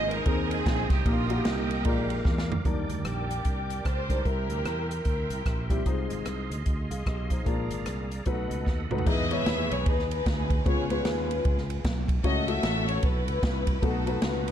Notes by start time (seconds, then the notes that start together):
Already playing: G#1 G#3 C4 D#4 F4 G#4 C5 D#5 F5 G#5 D#6
0.11 D#4 A#4, ride
0.26 D#2 D#3 C4 D#4 G#4 D#5 D#6, kick, ride
0.51 C4 D#4 G#4, ride
0.66 A#1, kick, snare, ride
0.90 C2 G4, kick, snare, ride
1.05 A#1 A#2 A#3 D#4 F4 G4 A#4 G5 D#6, kick, ride
1.30 A#3 D#4 F#4, ride
1.35 G4
1.45 C2 A#3 D#4 G4, snare, ride
1.71 ride
1.85 A#1 A#2 G#3 A#3 F4 A#4 D5 F5 D6, kick, ride
2.10 ride
2.25 E2, kick, snare
2.38 snare
2.52 floor tom
2.64 D#2 D#3 F#3 D4 D#4 A#4 D5 G5 D6, kick, closed hi-hat
2.70 G3
2.90 D2, closed hi-hat
3.05 A#1 A#3 D4 G4, cross-stick, closed hi-hat
3.31 closed hi-hat
3.45 C2, kick, closed hi-hat
3.70 closed hi-hat
3.85 C#2 G4 C5, kick, cross-stick, closed hi-hat
4.09 G3 D4 D#4 A#4, kick, cross-stick, closed hi-hat
4.25 C2 C3 G3 C4 E4 G4 A#4 E5 C6, kick, closed hi-hat
4.50 D2, closed hi-hat
4.65 E2, cross-stick, closed hi-hat
4.90 A#4, closed hi-hat
5.05 D2 E4 G4 A#4, kick, closed hi-hat
5.30 C2, closed hi-hat
5.46 A#1, kick, cross-stick, closed hi-hat
5.70 G3 C4 E4 G4, kick, cross-stick, closed hi-hat
5.86 C2 C3 G3 D#4 F4 G#4 C5 D#5 F5, kick, closed hi-hat
5.90 G#3
6.10 closed hi-hat
6.26 C2, cross-stick, closed hi-hat
6.50 D2, closed hi-hat
6.66 D2, kick, closed hi-hat
6.90 C2 G#4 F5, closed hi-hat
7.06 B1 G4 D#5, kick, cross-stick, closed hi-hat
7.30 D#4 C5, kick, closed hi-hat
7.45 A#1 A#2 G#3 D4 F4 A#4 D5 A#5, kick, closed hi-hat
7.71 G#1, closed hi-hat
7.86 C2, cross-stick, closed hi-hat
8.11 closed hi-hat
8.26 B1 B2 A3 D#4 F#4 A4 B4 D#5 F#5 B5, kick, closed hi-hat
8.51 C#2, closed hi-hat
8.66 D#2, kick, snare
8.91 C#2 A3 D#4 F#4 B4, mid tom
8.98 floor tom
9.06 E2 E3 G#3 B3 D#4 E4 G#4 B4 D#5, kick, crash
9.30 G#3 B3 E4 G#4 B4 C#5 E5, ride
9.46 D#2, snare, ride
9.71 B1 C#5, ride
9.86 D#2 D#4 G#4 B4, kick, ride
9.99 snare
10.11 D#4 G#4 B4, ride
10.26 D2, kick, snare, ride
10.50 kick, ride
10.65 C#2 C#3 G#3 B3 C#4 F4 G#4 B4 C#5, kick, ride
10.90 G#3 B3 C#4 F4 B4 C#5, ride
11.05 D#2 F4 G#4 B4, snare, ride
11.31 ride
11.45 C#2, kick, ride
11.58 snare
11.70 ride
11.84 B1, kick, snare, ride
12.08 kick, ride
12.23 C#2 C#3 A3 C#4 E4 F#4 A4 C#5 D#5, kick, ride
12.47 A3 C#4 E4 F#4 A4 E5, ride
12.63 A1, snare, ride
12.88 C#5, ride
13.03 B1 E4 F#4 B4, kick, ride
13.28 C#2, ride
13.43 C2, kick, snare, ride
13.67 kick, ride
13.82 B1 B2 A3 B3 D#4 F#4 A4 B4, kick, ride
14.06 A3 B3 D#4 F#4 B4, ride
14.22 C#2 D#4 F#4 B4, snare, ride
14.48 ride